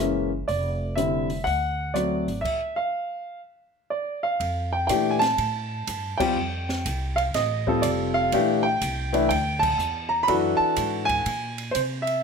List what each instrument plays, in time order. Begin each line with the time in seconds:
Already playing: upright bass F#1, grand piano E5
0.00 grand piano E3 G#3 A#3 C#4
0.48 upright bass F1, grand piano D5, kick, open hi-hat
0.96 grand piano D3 G3 C4 E4 E5, closed hi-hat
1.30 open hi-hat
1.44 upright bass D2, grand piano F#5, kick, open hi-hat
1.94 grand piano F#3 A3 C4 F#4 D5, cross-stick, closed hi-hat
2.28 upright bass G#1, open hi-hat
2.41 grand piano E5, kick
2.45 crash
2.76 grand piano F5
3.90 grand piano D5
4.23 grand piano F5
4.40 upright bass F2, kick, ride
4.73 grand piano G5
4.87 upright bass A#2, grand piano E3 A3 D4 G4 G5, kick, hi-hat pedal, ride
5.11 grand piano G#5
5.19 grand piano A5, snare, ride
5.38 upright bass A2, kick, ride
5.87 upright bass G2, kick, hi-hat pedal, ride
6.18 grand piano G3 C4 F4 G4 G5, muted upright bass stroke, kick, crash
6.36 upright bass F2
6.69 snare
6.86 upright bass C2, kick, hi-hat pedal, ride
7.16 grand piano F5, ride
7.34 upright bass A1, grand piano D#5, kick, snare, ride
7.67 grand piano G3 C4 F4 A4, kick
7.82 upright bass F1, grand piano D5, kick, hi-hat pedal, ride
8.14 grand piano F5
8.32 upright bass A#1, grand piano E3 A3 D4 G4, kick, ride
8.63 grand piano G5
8.81 upright bass C2, kick, hi-hat pedal, ride
9.13 grand piano E3 A3 D4 E4, ride
9.29 upright bass D2, grand piano G5, kick, ride
9.59 grand piano A5, kick, crash
9.78 upright bass E2, hi-hat pedal
10.09 grand piano A#5
10.23 grand piano B5
10.27 upright bass F#2, grand piano E3 D4 F#4 A4, kick, ride
10.57 grand piano A5, muted upright bass stroke
10.76 upright bass G#2, kick, hi-hat pedal, ride
11.05 grand piano G#5, ride
11.10 kick
11.26 upright bass A#2, kick, ride
11.58 ride
11.71 upright bass C3, grand piano C5, kick, hi-hat pedal, ride
12.02 grand piano E5
12.07 ride